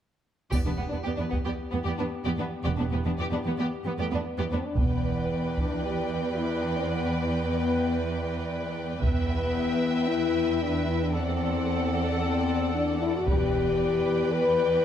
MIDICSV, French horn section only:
0, 0, Header, 1, 2, 480
1, 0, Start_track
1, 0, Tempo, 531444
1, 478, Time_signature, 4, 2, 24, 8
1, 13412, End_track
2, 0, Start_track
2, 0, Title_t, "French horn section"
2, 0, Program_c, 0, 60
2, 471, Note_on_c, 0, 59, 33
2, 473, Note_on_c, 0, 67, 32
2, 3561, Note_off_c, 0, 59, 0
2, 3562, Note_off_c, 0, 67, 0
2, 3602, Note_on_c, 0, 57, 50
2, 3824, Note_off_c, 0, 57, 0
2, 3836, Note_on_c, 0, 59, 44
2, 4078, Note_off_c, 0, 59, 0
2, 4081, Note_on_c, 0, 60, 49
2, 4201, Note_off_c, 0, 60, 0
2, 4206, Note_on_c, 0, 62, 45
2, 4323, Note_off_c, 0, 62, 0
2, 4323, Note_on_c, 0, 59, 45
2, 5041, Note_off_c, 0, 59, 0
2, 5046, Note_on_c, 0, 62, 52
2, 5278, Note_off_c, 0, 62, 0
2, 5278, Note_on_c, 0, 67, 63
2, 5748, Note_on_c, 0, 64, 53
2, 5759, Note_off_c, 0, 67, 0
2, 5986, Note_on_c, 0, 62, 44
2, 5994, Note_off_c, 0, 64, 0
2, 6113, Note_off_c, 0, 62, 0
2, 6117, Note_on_c, 0, 60, 44
2, 6238, Note_off_c, 0, 60, 0
2, 6240, Note_on_c, 0, 59, 50
2, 6582, Note_off_c, 0, 59, 0
2, 6723, Note_on_c, 0, 59, 46
2, 7191, Note_off_c, 0, 59, 0
2, 8158, Note_on_c, 0, 59, 56
2, 9081, Note_off_c, 0, 59, 0
2, 9108, Note_on_c, 0, 64, 63
2, 9592, Note_off_c, 0, 64, 0
2, 9595, Note_on_c, 0, 62, 51
2, 9832, Note_on_c, 0, 64, 53
2, 9835, Note_off_c, 0, 62, 0
2, 9952, Note_off_c, 0, 64, 0
2, 9964, Note_on_c, 0, 62, 48
2, 10080, Note_off_c, 0, 62, 0
2, 10085, Note_on_c, 0, 60, 59
2, 11021, Note_off_c, 0, 60, 0
2, 11044, Note_on_c, 0, 60, 68
2, 11509, Note_off_c, 0, 60, 0
2, 11518, Note_on_c, 0, 62, 51
2, 11752, Note_off_c, 0, 62, 0
2, 11755, Note_on_c, 0, 64, 60
2, 11872, Note_off_c, 0, 64, 0
2, 11882, Note_on_c, 0, 66, 58
2, 11993, Note_on_c, 0, 67, 66
2, 11998, Note_off_c, 0, 66, 0
2, 12945, Note_on_c, 0, 71, 74
2, 12952, Note_off_c, 0, 67, 0
2, 13412, Note_off_c, 0, 71, 0
2, 13412, End_track
0, 0, End_of_file